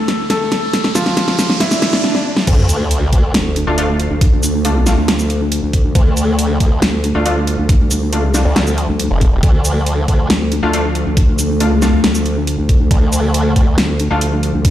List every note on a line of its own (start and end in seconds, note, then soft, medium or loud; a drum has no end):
0.00 2.00 D2 medium
0.00 2.00 D3 medium
0.00 0.21 A3 medium
0.00 2.00 A3 medium
0.00 0.21 A4 medium
0.00 2.00 A4 medium
0.00 riser medium
0.08 snare medium
0.08 closed hi-hat medium
0.30 0.87 A3 medium
0.30 0.87 A4 medium
0.30 snare medium
0.30 closed hi-hat medium
0.52 snare medium
0.52 closed hi-hat medium
0.73 snare medium
0.73 closed hi-hat medium
0.84 snare medium
0.95 1.52 F3 medium
0.95 1.52 F4 loud
0.95 snare medium
0.95 closed hi-hat medium
0.95 shaker medium
1.06 snare medium
1.17 snare loud
1.17 closed hi-hat medium
1.28 snare medium
1.39 snare loud
1.39 closed hi-hat medium
1.39 shaker medium
1.50 snare medium
1.60 1.95 E3 medium
1.60 1.95 E4 medium
1.60 snare loud
1.60 closed hi-hat medium
1.60 swell medium
1.71 snare medium
1.71 shaker medium
1.82 snare loud
1.82 closed hi-hat medium
1.93 snare medium
2.04 snare medium
2.15 snare medium
2.37 snare medium
2.47 3.11 D2 loud
2.47 14.70 D3 medium
2.47 14.70 F3 medium
2.47 5.94 A3 medium
2.47 kick loud
2.47 closed hi-hat medium
2.47 crash loud
2.47 sub drop medium
2.69 closed hi-hat medium
2.69 shaker medium
2.91 closed hi-hat medium
3.13 3.33 D2 loud
3.13 kick medium
3.13 closed hi-hat medium
3.34 3.65 D2 medium
3.34 snare loud
3.34 closed hi-hat medium
3.56 closed hi-hat medium
3.67 4.09 D2 loud
3.67 3.76 A3 medium
3.67 3.76 D4 medium
3.67 3.76 F4 loud
3.78 3.85 A3 loud
3.78 3.85 D4 medium
3.78 3.85 F4 loud
3.78 closed hi-hat medium
4.00 closed hi-hat medium
4.10 4.96 D2 loud
4.21 kick loud
4.21 closed hi-hat medium
4.43 closed hi-hat medium
4.43 shaker medium
4.65 4.76 A3 medium
4.65 4.76 D4 medium
4.65 4.76 F4 medium
4.65 closed hi-hat medium
4.86 4.93 A3 medium
4.86 4.93 D4 medium
4.86 4.93 F4 loud
4.86 snare medium
4.86 closed hi-hat medium
4.86 shaker medium
4.97 5.61 D2 medium
5.08 snare loud
5.08 closed hi-hat medium
5.19 shaker soft
5.30 closed hi-hat medium
5.52 closed hi-hat medium
5.63 5.83 D2 loud
5.73 kick medium
5.73 closed hi-hat medium
5.84 5.93 D2 loud
5.95 6.59 D2 loud
5.95 9.42 G3 medium
5.95 kick loud
5.95 closed hi-hat medium
6.17 closed hi-hat medium
6.17 shaker medium
6.39 closed hi-hat medium
6.60 6.80 D2 loud
6.60 kick medium
6.60 closed hi-hat medium
6.82 7.13 D2 loud
6.82 snare loud
6.82 closed hi-hat medium
7.04 closed hi-hat medium
7.15 7.57 D2 loud
7.15 7.24 A3 medium
7.15 7.24 D4 medium
7.15 7.24 F4 loud
7.26 7.33 A3 loud
7.26 7.33 D4 medium
7.26 7.33 F4 loud
7.26 closed hi-hat medium
7.47 closed hi-hat medium
7.58 8.18 D2 loud
7.69 kick loud
7.69 closed hi-hat medium
7.91 closed hi-hat medium
7.91 shaker medium
8.13 8.24 A3 medium
8.13 8.24 D4 medium
8.13 8.24 F4 medium
8.13 closed hi-hat medium
8.18 8.43 C#2 loud
8.34 8.41 A3 medium
8.34 8.41 D4 medium
8.34 8.41 F4 medium
8.34 snare medium
8.34 closed hi-hat medium
8.34 shaker medium
8.45 8.87 D2 loud
8.56 snare loud
8.56 closed hi-hat medium
8.67 shaker medium
8.78 closed hi-hat medium
8.89 9.09 D2 loud
9.00 closed hi-hat medium
9.10 9.30 F1 medium
9.21 kick medium
9.21 closed hi-hat medium
9.32 9.41 E1 loud
9.43 10.07 D2 loud
9.43 12.90 A3 medium
9.43 kick loud
9.43 closed hi-hat medium
9.65 closed hi-hat medium
9.65 shaker medium
9.87 closed hi-hat medium
10.08 10.28 D2 medium
10.08 kick medium
10.08 closed hi-hat medium
10.30 10.61 D2 loud
10.30 snare loud
10.30 closed hi-hat medium
10.52 closed hi-hat medium
10.63 11.04 D2 loud
10.63 10.72 A3 medium
10.63 10.72 D4 medium
10.63 10.72 F4 loud
10.73 10.80 A3 loud
10.73 10.80 D4 medium
10.73 10.80 F4 loud
10.73 closed hi-hat medium
10.95 closed hi-hat medium
11.06 11.66 D2 loud
11.17 kick loud
11.17 closed hi-hat medium
11.39 closed hi-hat medium
11.39 shaker medium
11.60 11.71 A3 medium
11.60 11.71 D4 medium
11.60 11.71 F4 medium
11.60 closed hi-hat medium
11.66 11.91 C#2 loud
11.82 11.89 A3 medium
11.82 11.89 D4 medium
11.82 11.89 F4 loud
11.82 snare medium
11.82 closed hi-hat medium
11.82 shaker medium
11.93 12.57 D2 loud
12.04 snare loud
12.04 closed hi-hat medium
12.15 shaker medium
12.26 closed hi-hat soft
12.47 closed hi-hat medium
12.58 12.78 D2 loud
12.69 kick medium
12.69 closed hi-hat medium
12.80 12.89 D2 loud
12.91 13.54 D2 loud
12.91 14.70 G3 medium
12.91 kick loud
12.91 closed hi-hat medium
13.13 closed hi-hat medium
13.13 shaker medium
13.34 closed hi-hat medium
13.56 13.76 D2 medium
13.56 kick medium
13.56 closed hi-hat medium
13.78 14.09 D2 loud
13.78 snare loud
13.78 closed hi-hat medium
14.00 closed hi-hat medium
14.10 14.52 D2 loud
14.10 14.20 A3 medium
14.10 14.20 D4 medium
14.10 14.20 F4 loud
14.21 closed hi-hat medium
14.43 closed hi-hat medium
14.54 14.70 D2 loud
14.65 kick loud
14.65 closed hi-hat medium